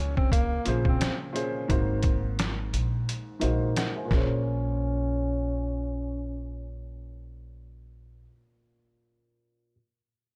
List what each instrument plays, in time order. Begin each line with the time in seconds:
Already playing: upright bass C#2, upright piano A#2 C#3 F3 F#4 G#4 C5 D#5, tenor saxophone C#4
0.17 tenor saxophone C4, kick
0.32 tenor saxophone A#3, kick, closed hi-hat
0.65 upright bass A#1, upright piano A#2 C#3 F3 G#4 C5, closed hi-hat
0.85 tenor saxophone C4, kick
1.01 snare, closed hi-hat
1.33 upright piano A#2 F3 C#4 G#4 C5, closed hi-hat
1.68 upright bass G#1, upright piano G#2 D#3 A#3 F#4 C5, kick, closed hi-hat
2.03 kick, closed hi-hat
2.39 snare, closed hi-hat
2.73 upright bass A#1, closed hi-hat
3.09 closed hi-hat
3.39 upright bass A#1, upright piano G#2 D#3 A#3 F#4 C5 D#5, closed hi-hat
3.76 upright piano F#5, snare, closed hi-hat
3.96 upright piano C5 G#5
4.05 upright piano A#2 A#3
4.11 upright bass A#1, tenor saxophone C#4, upright piano C#4 G#4, kick, snare
4.17 upright piano C5